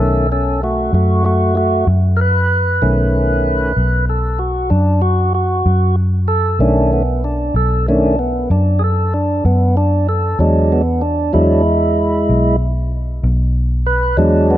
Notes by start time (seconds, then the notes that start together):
0.00 B1 D#3 A3 C#4 A4
0.32 C#4 A4
0.63 A3 F#4
0.93 F#2 A3 F#4
1.25 A3 F#4
1.55 A3 F#4
1.87 F#2
2.17 A#4
2.21 B4
2.82 B1 D#3 A3 C#4
3.77 B1
4.09 A4
4.39 F#4
4.70 F#2 D4
5.02 F#4
5.34 F#4
5.66 F#2
6.28 A4
6.59 B1 D#3 A3 C#4 D4
6.93 B3
7.24 D4
7.54 B1 A4
7.88 D#3 A3 C#4 D4
8.19 B3
8.50 F#2 D4
8.79 G#4
8.84 A4
9.14 D4
9.45 F#2 B3
9.77 D4
10.09 A4
10.39 E2 F#3 G#3 D4
10.72 B3
11.01 D4
11.33 E2 F#3 G#3 D4 E4
12.29 B1
13.23 B1
13.86 B4
14.17 E2 F#3 G#3 D4
14.51 B3